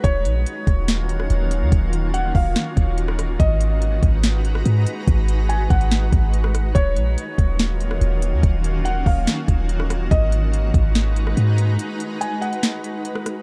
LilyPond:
<<
  \new Staff \with { instrumentName = "Felt piano" } { \time 4/4 \key gis \dorian \tempo 4 = 143 cis''1 | r4 fis''8 eis''4. r4 | dis''1 | r4 gis''8 fis''2~ fis''8 |
cis''1 | r4 fis''8 eis''4. r4 | dis''1 | r4 gis''8 fis''2~ fis''8 | }
  \new Staff \with { instrumentName = "Synth texture" } { \time 4/4 \key gis \dorian <fis dis' cis''>1~ | <fis dis' cis''>1 | <gis fis' b'>1~ | <gis fis' b'>1 |
<fis dis' cis''>1~ | <fis dis' cis''>1 | <gis fis' b'>1~ | <gis fis' b'>1 | }
  \new Staff \with { instrumentName = "Ambient pad" } { \time 4/4 \key gis \dorian <dis ais cis' eis' fis'>1~ | <dis ais cis' eis' fis'>1 | <gis dis' fis' b' ais''>1~ | <gis dis' fis' b' ais''>1 |
<dis ais cis' eis' fis'>1~ | <dis ais cis' eis' fis'>1 | <gis dis' b' ais''>1~ | <gis dis' b' ais''>1 | }
  \new Staff \with { instrumentName = "808-style bass" } { \clef bass \time 4/4 \key gis \dorian dis,,8 ais,,8 r8 dis,,4. dis,,8. dis,16 | dis,,4. dis,,8 r8 dis,,4. | gis,,4. gis,,4. gis,8 r8 | gis,,4. gis,,4 gis,,4. |
dis,,8 ais,,8 r8 dis,,4. dis,,8. dis,16 | dis,,4. dis,,8 r8 dis,,4. | gis,,4. gis,,4. gis,4 | r1 | }
  \new DrumStaff \with { instrumentName = "Drums" } \drummode { \time 4/4 <hh bd>8 hh8 hh8 <hh bd>8 <hh sn>8 hh16 ss16 hh8 hh8 | <hh bd>8 hh8 hh8 <hho bd>8 <hh sn>8 <hh bd>8 hh16 ss16 <hh ss>8 | <hh bd>8 hh8 hh8 <hh bd>8 <hh sn>8 hh16 ss16 hh8 hh8 | <hh bd>8 hh8 hh8 <hh bd>16 hh16 <hh sn>8 <hh bd>8 hh16 ss16 <hh ss>8 |
<hh bd>8 hh8 hh8 <hh bd>8 <hh sn>8 hh16 ss16 hh8 hh8 | <hh bd>8 hh8 hh8 <hho bd>8 <hh sn>8 <hh bd>8 hh16 ss16 <hh ss>8 | <hh bd>8 hh8 hh8 <hh bd>8 <hh sn>8 hh16 ss16 hh8 hh8 | hh8 hh8 hh8 hh16 hh16 <hh sn>8 hh8 hh16 ss16 <hh ss>8 | }
>>